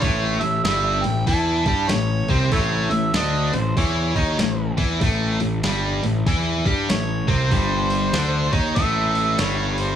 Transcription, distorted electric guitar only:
X:1
M:4/4
L:1/8
Q:"Swing" 1/4=96
K:Amix
V:1 name="Distorted electric guitar" clef=bass
[A,,A,] A,, [G,,G,] A,, [E,E] [G,G] A,, [=C,=C] | [A,,A,] A,, [D,D] A,, [E,E] [^D,^D] A,, [E,E] | [A,,A,] A,, [G,,G,] A,, [E,E] [G,G] A,, [=C,=C] | [G,,G,]2 [D,D] [^D,^D] [A,,A,]2 [G,,G,]2 |]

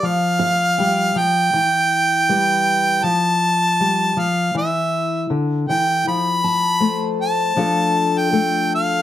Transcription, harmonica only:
X:1
M:4/4
L:1/16
Q:1/4=80
K:Flyd
V:1 name="Harmonica"
f6 g8- g2 | a6 f2 e4 z2 g2 | b6 a4- a g3 f2 |]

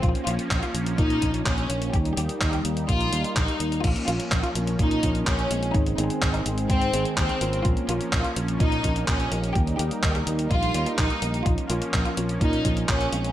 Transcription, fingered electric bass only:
X:1
M:4/4
L:1/8
Q:1/4=126
K:Bbdor
V:1 name="Fingered electric bass" clef=bass
B,,, B,,, B,,, B,,, B,, B,,, B,,, B,,, | E,, E,, E,, E,, B,,, E,, B,,, E,, | B,,, B,,, B,,, B,,, B,, B,,, B,,, B,,, | A,,, A,,, A,,, A,,, A,, A,,, E,, A,,, |
B,,, B,,, B,,, B,,, B,, B,,, B,,, B,,, | E,, E,, E,, E,, B,,, E,, B,,, B,,, | B,,, B,,, B,,, B,,, B,, B,,, B,,, B,,, |]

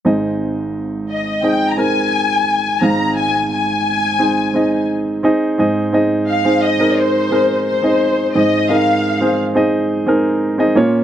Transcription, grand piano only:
X:1
M:4/4
L:1/16
Q:1/4=87
K:Ab
V:1 name="Grand piano"
[CEAe]6 z2 [CEAe]2 [CEAB]4- [CEAB] z | [CEAf]6 z2 [CEAc]2 [CEAe]4 [CEAe]2 | [CEAe]2 [CEAe]2 z [CEAc]2 [CEAB]2 z [CEAB]2 z [CEAe]2 z | [CEAc]2 [CEAB]2 z [CEAc]2 [CEAe]2 z [CEAB]2 z [CEAe] [B,DFd]2 |]
V:2 name="Grand piano" clef=bass
[A,,,A,,]16 | [A,,,A,,]12- [A,,,A,,]2 z2 | A,,6 z8 z2 | A,,6 z8 B,,2 |]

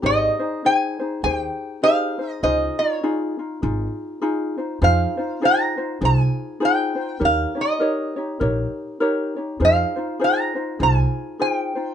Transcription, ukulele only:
X:1
M:4/4
L:1/8
Q:"Swing" 1/4=100
K:Ab
V:1 name="Ukulele"
[EGAc] [EAc] [EAc] [EAc] [EGAc]2 [EGAc] [EAc] | [EFAc] [EF] [EFA] [EF] [EFA]2 [EFA] [EFc] | [EFAc] [EFc] [EFAc] [EFc] [EFAc]2 [EFAc] [EFc] | [EGBd] [EGd] [EGBd] [EGd] [EGBd]2 [EGBd] [EGd] |
[EFAc] [EFc] [EFAc] [EFc] [EFAc]2 [EFAc] [EFc] |]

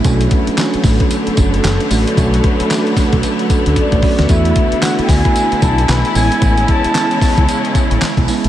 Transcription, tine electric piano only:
X:1
M:4/4
L:1/16
Q:"Swing 16ths" 1/4=113
K:Bdor
V:1 name="Tine electric piano"
[A,CDF]3 z [A,CDF]6 z4 [A,CDF]2 | [A,CDF]3 z [A,CDF]6 z4 [A,CDF]2 | [A,B,DF]3 z [A,B,DF]6 z4 [G,B,CE]2- | [G,B,CE]2 z2 [G,B,CE]6 z4 [G,B,CE]2 |]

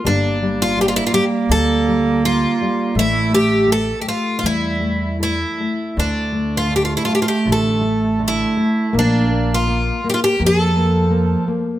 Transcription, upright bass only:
X:1
M:4/4
L:1/8
Q:1/4=82
K:Dm
V:1 name="Upright bass" clef=bass
G,,,4 D,,4 | A,,,4 E,,4 | D,,4 A,,,4 | B,,,4 F,,4 |]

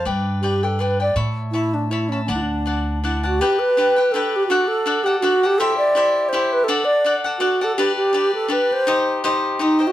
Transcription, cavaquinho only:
X:1
M:3/4
L:1/8
Q:"Swing" 1/4=164
K:D
V:1 name="Cavaquinho"
[DBdg]2 [DBdg] [Bdg] [DBdg] [Bdg] | [ceab]2 [ceab]2 [ceab] [eab] | [Ddfa]2 [Ddfa]2 [Ddfa] [dfa] | [K:G] [DGBg]2 [DGBg] [GBg] [DGBg]2 |
[DAdf]2 [DAdf] [Adf] [DAdf] [Adf] | [EGce]2 [EGce]2 [EGce]2 | [DAdf]2 [DAdf] [Adf] [DAdf] [Adf] | [DGBd]2 [DGBd]2 [DGBd]2 |
[_EGc_e]2 [EGce]2 [EGce] [Gce] |]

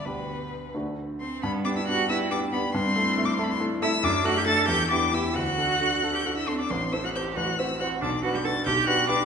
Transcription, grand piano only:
X:1
M:6/8
L:1/8
Q:3/8=91
K:G
V:1 name="Grand piano"
[D,,D,B,DG]3 [D,,D,A,DF]3 | G,, [B,DG] [B,DG] [B,DG] [B,DG] [B,DG] | G,, [A,EA] [A,EA] [A,EA] [A,EA] [A,EA] | F,, [A,DA] [A,DA] E,, [B,EG] [B,EG] |
D,, [DA] [DA] [DA] [DA] [DA] | A,,, [CAc] [CAc] A,,, [CFc] [CFc] | B,,, [DFB] [DFB] B,,, [DGB] [DGB] |]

